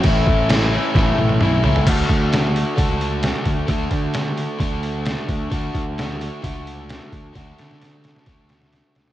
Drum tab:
CC |x---x-----------|x---------------|----------------|----------------|
HH |----------------|o-o-o-o-o-o-o-o-|o-o-o-o-o-o-o-o-|o-o-o-o-o-o-o-o-|
SD |----o---o-------|----o-------o---|----o-------o---|----o-------o---|
T1 |----------oo----|----------------|----------------|----------------|
T2 |------------o---|----------------|----------------|----------------|
FT |--------------oo|----------------|----------------|----------------|
BD |o-o-----o-------|o-o-----o-----o-|o-o-----o-----o-|o-o-----o-----o-|

CC |----------------|
HH |o-o-o-o-o-o-o-o-|
SD |o-ooo-ooo-ooo-oo|
T1 |----------------|
T2 |----------------|
FT |----------------|
BD |o-------o-------|